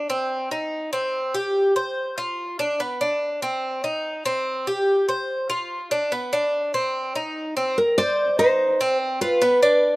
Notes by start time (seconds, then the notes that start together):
0.10 C4
0.51 D#4
0.93 C4
1.34 G4
1.76 C5
2.18 F4
2.59 D4
2.80 B3
3.01 D4
3.42 C4
3.84 D#4
4.25 C4
4.67 G4
5.09 C5
5.50 F4
5.91 D4
6.12 B3
6.33 D4
6.74 C4
7.15 D#4
7.57 C4
7.78 A#4
7.98 C5 D5
8.39 D#4 C5
8.81 C4
9.21 F4 B4
9.42 B3
9.63 D4